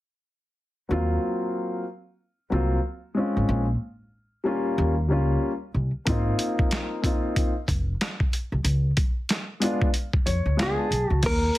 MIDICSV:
0, 0, Header, 1, 5, 480
1, 0, Start_track
1, 0, Tempo, 645161
1, 676, Time_signature, 4, 2, 24, 8
1, 8616, End_track
2, 0, Start_track
2, 0, Title_t, "Hollow-body jazz guitar"
2, 0, Program_c, 0, 26
2, 7905, Note_on_c, 0, 68, 95
2, 8270, Note_off_c, 0, 68, 0
2, 8270, Note_on_c, 0, 66, 95
2, 8375, Note_off_c, 0, 66, 0
2, 8378, Note_on_c, 0, 70, 92
2, 8616, Note_off_c, 0, 70, 0
2, 8616, End_track
3, 0, Start_track
3, 0, Title_t, "Grand piano"
3, 0, Program_c, 1, 0
3, 661, Note_on_c, 1, 54, 64
3, 672, Note_on_c, 1, 58, 54
3, 677, Note_on_c, 1, 60, 58
3, 688, Note_on_c, 1, 65, 78
3, 1351, Note_off_c, 1, 54, 0
3, 1357, Note_off_c, 1, 58, 0
3, 1359, Note_off_c, 1, 60, 0
3, 1364, Note_off_c, 1, 65, 0
3, 1860, Note_on_c, 1, 54, 70
3, 1869, Note_on_c, 1, 58, 63
3, 1875, Note_on_c, 1, 60, 67
3, 1886, Note_on_c, 1, 65, 76
3, 2052, Note_off_c, 1, 54, 0
3, 2057, Note_off_c, 1, 58, 0
3, 2060, Note_off_c, 1, 60, 0
3, 2065, Note_off_c, 1, 65, 0
3, 2340, Note_on_c, 1, 56, 63
3, 2350, Note_on_c, 1, 60, 55
3, 2359, Note_on_c, 1, 61, 62
3, 2368, Note_on_c, 1, 65, 64
3, 2705, Note_off_c, 1, 56, 0
3, 2710, Note_off_c, 1, 60, 0
3, 2715, Note_off_c, 1, 61, 0
3, 2720, Note_off_c, 1, 65, 0
3, 3301, Note_on_c, 1, 55, 73
3, 3310, Note_on_c, 1, 58, 68
3, 3317, Note_on_c, 1, 61, 62
3, 3327, Note_on_c, 1, 65, 78
3, 3666, Note_off_c, 1, 55, 0
3, 3670, Note_off_c, 1, 58, 0
3, 3674, Note_off_c, 1, 61, 0
3, 3679, Note_off_c, 1, 65, 0
3, 3782, Note_on_c, 1, 55, 66
3, 3792, Note_on_c, 1, 58, 62
3, 3800, Note_on_c, 1, 61, 64
3, 3809, Note_on_c, 1, 65, 73
3, 4088, Note_off_c, 1, 55, 0
3, 4092, Note_off_c, 1, 58, 0
3, 4097, Note_off_c, 1, 61, 0
3, 4101, Note_off_c, 1, 65, 0
3, 4504, Note_on_c, 1, 58, 75
3, 4512, Note_on_c, 1, 60, 67
3, 4522, Note_on_c, 1, 63, 68
3, 4532, Note_on_c, 1, 65, 83
3, 5193, Note_off_c, 1, 58, 0
3, 5197, Note_off_c, 1, 60, 0
3, 5201, Note_off_c, 1, 63, 0
3, 5207, Note_off_c, 1, 65, 0
3, 5222, Note_on_c, 1, 58, 64
3, 5229, Note_on_c, 1, 60, 59
3, 5240, Note_on_c, 1, 63, 60
3, 5247, Note_on_c, 1, 65, 73
3, 5586, Note_off_c, 1, 58, 0
3, 5590, Note_off_c, 1, 60, 0
3, 5596, Note_off_c, 1, 63, 0
3, 5599, Note_off_c, 1, 65, 0
3, 7143, Note_on_c, 1, 56, 72
3, 7151, Note_on_c, 1, 59, 70
3, 7159, Note_on_c, 1, 62, 71
3, 7169, Note_on_c, 1, 65, 88
3, 7334, Note_off_c, 1, 56, 0
3, 7338, Note_off_c, 1, 59, 0
3, 7341, Note_off_c, 1, 62, 0
3, 7346, Note_off_c, 1, 65, 0
3, 7632, Note_on_c, 1, 73, 66
3, 7857, Note_off_c, 1, 73, 0
3, 7863, Note_on_c, 1, 56, 73
3, 7869, Note_on_c, 1, 59, 67
3, 7875, Note_on_c, 1, 77, 65
3, 7880, Note_on_c, 1, 62, 68
3, 7887, Note_on_c, 1, 65, 87
3, 8012, Note_off_c, 1, 77, 0
3, 8017, Note_on_c, 1, 81, 60
3, 8054, Note_off_c, 1, 56, 0
3, 8057, Note_off_c, 1, 59, 0
3, 8062, Note_off_c, 1, 62, 0
3, 8065, Note_off_c, 1, 65, 0
3, 8329, Note_off_c, 1, 81, 0
3, 8616, End_track
4, 0, Start_track
4, 0, Title_t, "Upright bass"
4, 0, Program_c, 2, 32
4, 674, Note_on_c, 2, 39, 78
4, 860, Note_off_c, 2, 39, 0
4, 1875, Note_on_c, 2, 36, 73
4, 2060, Note_off_c, 2, 36, 0
4, 2505, Note_on_c, 2, 32, 77
4, 2576, Note_off_c, 2, 32, 0
4, 2594, Note_on_c, 2, 34, 88
4, 2780, Note_off_c, 2, 34, 0
4, 3557, Note_on_c, 2, 39, 96
4, 3795, Note_off_c, 2, 39, 0
4, 3795, Note_on_c, 2, 37, 75
4, 3981, Note_off_c, 2, 37, 0
4, 4273, Note_on_c, 2, 36, 75
4, 4388, Note_off_c, 2, 36, 0
4, 4517, Note_on_c, 2, 32, 95
4, 4702, Note_off_c, 2, 32, 0
4, 5715, Note_on_c, 2, 29, 86
4, 5901, Note_off_c, 2, 29, 0
4, 6340, Note_on_c, 2, 36, 74
4, 6412, Note_off_c, 2, 36, 0
4, 6431, Note_on_c, 2, 37, 88
4, 6618, Note_off_c, 2, 37, 0
4, 7634, Note_on_c, 2, 41, 76
4, 7748, Note_off_c, 2, 41, 0
4, 7779, Note_on_c, 2, 38, 75
4, 7852, Note_off_c, 2, 38, 0
4, 7876, Note_on_c, 2, 37, 68
4, 7990, Note_off_c, 2, 37, 0
4, 8114, Note_on_c, 2, 35, 79
4, 8228, Note_off_c, 2, 35, 0
4, 8261, Note_on_c, 2, 37, 81
4, 8333, Note_off_c, 2, 37, 0
4, 8356, Note_on_c, 2, 39, 101
4, 8541, Note_off_c, 2, 39, 0
4, 8616, End_track
5, 0, Start_track
5, 0, Title_t, "Drums"
5, 4514, Note_on_c, 9, 42, 78
5, 4516, Note_on_c, 9, 36, 101
5, 4588, Note_off_c, 9, 42, 0
5, 4590, Note_off_c, 9, 36, 0
5, 4753, Note_on_c, 9, 42, 65
5, 4827, Note_off_c, 9, 42, 0
5, 4903, Note_on_c, 9, 36, 78
5, 4978, Note_off_c, 9, 36, 0
5, 4993, Note_on_c, 9, 42, 66
5, 5003, Note_on_c, 9, 38, 82
5, 5067, Note_off_c, 9, 42, 0
5, 5077, Note_off_c, 9, 38, 0
5, 5235, Note_on_c, 9, 36, 81
5, 5241, Note_on_c, 9, 42, 73
5, 5309, Note_off_c, 9, 36, 0
5, 5315, Note_off_c, 9, 42, 0
5, 5478, Note_on_c, 9, 36, 76
5, 5478, Note_on_c, 9, 42, 64
5, 5553, Note_off_c, 9, 36, 0
5, 5553, Note_off_c, 9, 42, 0
5, 5714, Note_on_c, 9, 36, 83
5, 5719, Note_on_c, 9, 42, 76
5, 5789, Note_off_c, 9, 36, 0
5, 5794, Note_off_c, 9, 42, 0
5, 5960, Note_on_c, 9, 42, 81
5, 5962, Note_on_c, 9, 38, 89
5, 6034, Note_off_c, 9, 42, 0
5, 6037, Note_off_c, 9, 38, 0
5, 6102, Note_on_c, 9, 36, 78
5, 6176, Note_off_c, 9, 36, 0
5, 6199, Note_on_c, 9, 42, 58
5, 6273, Note_off_c, 9, 42, 0
5, 6433, Note_on_c, 9, 42, 82
5, 6507, Note_off_c, 9, 42, 0
5, 6672, Note_on_c, 9, 42, 63
5, 6675, Note_on_c, 9, 36, 85
5, 6747, Note_off_c, 9, 42, 0
5, 6749, Note_off_c, 9, 36, 0
5, 6913, Note_on_c, 9, 42, 75
5, 6922, Note_on_c, 9, 38, 84
5, 6987, Note_off_c, 9, 42, 0
5, 6997, Note_off_c, 9, 38, 0
5, 7155, Note_on_c, 9, 42, 75
5, 7229, Note_off_c, 9, 42, 0
5, 7303, Note_on_c, 9, 36, 82
5, 7377, Note_off_c, 9, 36, 0
5, 7394, Note_on_c, 9, 42, 68
5, 7468, Note_off_c, 9, 42, 0
5, 7540, Note_on_c, 9, 36, 78
5, 7614, Note_off_c, 9, 36, 0
5, 7638, Note_on_c, 9, 42, 69
5, 7712, Note_off_c, 9, 42, 0
5, 7880, Note_on_c, 9, 42, 80
5, 7882, Note_on_c, 9, 38, 99
5, 7954, Note_off_c, 9, 42, 0
5, 7957, Note_off_c, 9, 38, 0
5, 8123, Note_on_c, 9, 42, 58
5, 8198, Note_off_c, 9, 42, 0
5, 8353, Note_on_c, 9, 42, 85
5, 8353, Note_on_c, 9, 49, 78
5, 8355, Note_on_c, 9, 36, 108
5, 8427, Note_off_c, 9, 42, 0
5, 8427, Note_off_c, 9, 49, 0
5, 8429, Note_off_c, 9, 36, 0
5, 8616, End_track
0, 0, End_of_file